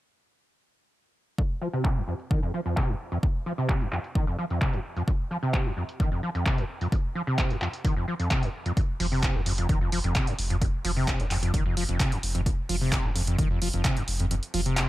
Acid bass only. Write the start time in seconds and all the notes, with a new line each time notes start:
1.38 F2
1.61 F3
1.73 C3
1.96 F2
2.08 F2
2.31 D#3
2.43 F2
2.54 F3
2.66 F2
2.77 C3
2.89 F2
3.12 F2
3.23 F2
3.46 F3
3.58 C3
3.81 F2
3.92 F2
4.15 D#3
4.27 F2
4.38 F3
4.50 F2
4.61 C3
4.73 F2
4.96 F2
5.08 F2
5.31 F3
5.43 C3
5.66 F2
5.77 F2
6.00 D#3
6.12 F2
6.23 F3
6.35 F2
6.46 C3
6.58 F2
6.81 F2
6.92 F2
7.15 F3
7.27 C3
7.50 F2
7.61 F2
7.85 D#3
7.96 F2
8.08 F3
8.19 F2
8.31 C3
8.43 F2
8.66 F2
8.77 F2
9.00 F3
9.12 C3
9.35 F2
9.46 F2
9.58 F2
9.69 D#3
9.81 F2
9.92 F3
10.04 F2
10.15 C3
10.27 F2
10.50 F2
10.62 F2
10.85 F3
10.97 C3
11.20 F2
11.31 F2
11.43 F2
11.54 D#3
11.66 F2
11.77 F3
11.89 F2
12.00 C3
12.12 F2
12.35 F2
12.46 F2
12.69 F3
12.81 C3
13.04 F2
13.15 F2
13.27 F2
13.39 D#3
13.50 F2
13.62 F3
13.73 F2
13.85 C3
13.97 F2
14.20 F2
14.31 F2
14.54 F3
14.66 C3